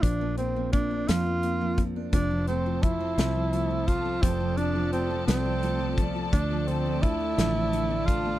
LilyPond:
<<
  \new Staff \with { instrumentName = "String section" } { \time 6/8 \key f \major \tempo 4. = 57 << { r2. | <f a' a''>2.~ | <f a' a''>2.~ | <f a' a''>2. | } \\ { r2. | c''2. | d''2.~ | d''2. | } >> }
  \new Staff \with { instrumentName = "Tenor saxophone" } { \time 6/8 \key f \major d'8 c'8 d'8 f'4 r8 | d'8 c'8 e'4. f'8 | c'8 d'8 c'8 c'4 r8 | d'8 c'8 e'4. f'8 | }
  \new Staff \with { instrumentName = "Steel-string acoustic guitar" } { \time 6/8 \key f \major <c' d'>16 f16 c'16 f16 c'16 d'16 f16 r16 c'16 f16 c'16 d'16 | f16 f16 a16 f16 a16 c'16 f16 f16 a16 f16 a16 c'16 | f16 f16 a16 f16 a16 c'16 f16 f16 a16 f16 a16 c'16 | f16 f16 a16 f16 a16 d'16 f16 f16 a16 f16 a16 d'16 | }
  \new Staff \with { instrumentName = "Grand piano" } { \clef bass \time 6/8 \key f \major <f bes d'>16 bes16 bes16 bes16 bes16 bes16 f'16 bes16 bes16 bes16 bes16 bes16 | f16 f16 f16 f16 f16 f16 c'16 f16 f16 f16 f16 f16 | c16 f16 f16 f16 f16 f16 c'16 f16 f16 f16 f16 f16 | d16 a16 d16 a16 d16 a16 d16 a16 d16 a16 d16 a16 | }
  \new Staff \with { instrumentName = "Fingered electric bass" } { \clef bass \time 6/8 \key f \major bes,,4. f,4. | f,,4. c,4. | f,,4. c,4. | d,4. a,,4. | }
  \new DrumStaff \with { instrumentName = "Drums" } \drummode { \time 6/8 <hh bd>8 hh8 <hh bd>8 <hh sn>8 hh8 <hh bd>8 | <hh bd>8 hh8 <hh bd>8 <hh sn>8 hh8 <hh bd>8 | <hh bd>8 hh8 hh8 <hh sn>8 hh8 <hh bd>8 | <hh bd>8 hh8 <hh bd>8 <hh sn>8 hh8 <hh bd>8 | }
>>